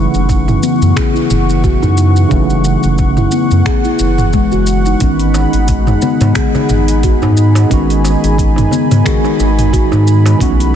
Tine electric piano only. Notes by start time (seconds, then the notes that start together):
Already playing: C#3 F#3 A3 E4
2.29 C#3 E3 F#3 A3
4.99 D#3 G#3 B3
5.03 F#4
7.69 D#3 G#3 B3
7.73 F#4
9.04 D#3 G#3 B3
9.08 F#4
10.38 E3 A3 B3 F#4